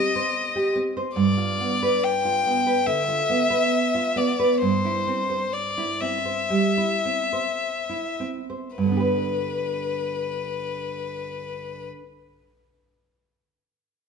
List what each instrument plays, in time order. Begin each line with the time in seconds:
Already playing: nylon-string guitar C4, violin D#5
0.16 nylon-string guitar C5
0.55 nylon-string guitar G4
0.75 nylon-string guitar C4
0.97 nylon-string guitar C5
1.15 nylon-string guitar G2, violin D5
1.37 nylon-string guitar F4
1.60 nylon-string guitar B3
1.83 nylon-string guitar B4
2.04 violin G5
2.25 nylon-string guitar F4
2.46 nylon-string guitar B3
2.67 nylon-string guitar B4
2.86 nylon-string guitar D3, violin E5
3.08 nylon-string guitar F4
3.29 nylon-string guitar B3
3.50 nylon-string guitar B4
3.95 nylon-string guitar F4
4.16 nylon-string guitar B3, violin D5
4.39 nylon-string guitar B4
4.62 nylon-string guitar G2, violin C5
4.85 nylon-string guitar E4
5.07 nylon-string guitar C4
5.30 nylon-string guitar C5
5.53 violin D5
5.78 nylon-string guitar E4
6.01 nylon-string guitar C4, violin E5
6.25 nylon-string guitar C5
6.50 nylon-string guitar G3
6.77 nylon-string guitar E4
7.05 nylon-string guitar C4
7.33 nylon-string guitar C5
7.89 nylon-string guitar E4
8.20 nylon-string guitar C4
8.50 nylon-string guitar C5
8.76 nylon-string guitar G2, violin B4
8.83 nylon-string guitar D3
8.87 nylon-string guitar B3
8.91 nylon-string guitar D4
8.96 nylon-string guitar G4 B4